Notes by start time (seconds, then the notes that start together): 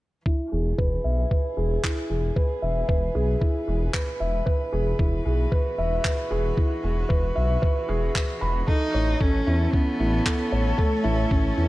0.25 E3 E4, kick
0.51 E1 G#4
0.69 B3
0.78 E1 B4, kick
1.04 B1 E5
1.31 B4, kick
1.57 E1 G#4
1.66 B4
1.84 E4, kick, clap
2.10 E1 G#4
2.36 B4, kick
2.62 E1 E5
2.88 E1 B4, kick
3.15 B1 G#4
3.41 E4, kick
3.67 E1 G#4
3.93 B4, kick, clap
4.20 E1 E5
4.46 B4, kick
4.73 E1 G#4
4.99 E1 E4, kick
5.08 F#4
5.25 B1 G#4
5.52 B4, kick
5.78 E1 E5
6.04 B4, kick, clap
6.31 E1 G#4
6.57 E4, kick
6.84 E1 G#4
7.09 E1 B4, kick
7.36 B1 E5
7.62 B4, kick
7.89 E1 G#4
8.15 B4, kick, clap
8.41 E1 B5
8.67 D#4 A4, kick
8.86 C#4
8.94 A1 A4 C#5
9.20 A1 C#4 A4, kick
9.47 E2 E4
9.72 B3 C#4 C#5, kick
10.00 A1 E4
10.26 A4, kick, clap
10.52 A1 C#5
10.78 A3 A4, kick
11.04 A1 E4
11.31 A1 C#4, kick
11.57 E2 E4